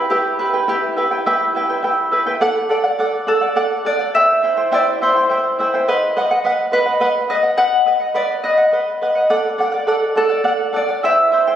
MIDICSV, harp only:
0, 0, Header, 1, 2, 480
1, 0, Start_track
1, 0, Tempo, 576369
1, 562, Time_signature, 6, 3, 24, 8
1, 9625, End_track
2, 0, Start_track
2, 0, Title_t, "Harp"
2, 0, Program_c, 0, 46
2, 0, Note_on_c, 0, 71, 86
2, 83, Note_on_c, 0, 67, 74
2, 323, Note_off_c, 0, 71, 0
2, 326, Note_on_c, 0, 71, 75
2, 571, Note_off_c, 0, 67, 0
2, 575, Note_on_c, 0, 67, 73
2, 2033, Note_off_c, 0, 71, 0
2, 2535, Note_off_c, 0, 67, 0
2, 2732, Note_on_c, 0, 69, 87
2, 3217, Note_on_c, 0, 74, 98
2, 3453, Note_on_c, 0, 76, 106
2, 3944, Note_off_c, 0, 74, 0
2, 3947, Note_on_c, 0, 74, 92
2, 4009, Note_off_c, 0, 74, 0
2, 4188, Note_on_c, 0, 72, 82
2, 4561, Note_off_c, 0, 69, 0
2, 4888, Note_off_c, 0, 76, 0
2, 5606, Note_on_c, 0, 71, 91
2, 5656, Note_off_c, 0, 72, 0
2, 6078, Note_on_c, 0, 75, 85
2, 6309, Note_on_c, 0, 78, 110
2, 6793, Note_on_c, 0, 74, 96
2, 6843, Note_off_c, 0, 75, 0
2, 7025, Note_on_c, 0, 75, 91
2, 7075, Note_off_c, 0, 74, 0
2, 7312, Note_off_c, 0, 71, 0
2, 7648, Note_off_c, 0, 78, 0
2, 8472, Note_on_c, 0, 69, 89
2, 8511, Note_off_c, 0, 75, 0
2, 8963, Note_on_c, 0, 74, 88
2, 9202, Note_on_c, 0, 76, 109
2, 9625, Note_off_c, 0, 69, 0
2, 9625, Note_off_c, 0, 74, 0
2, 9625, Note_off_c, 0, 76, 0
2, 9625, End_track
0, 0, End_of_file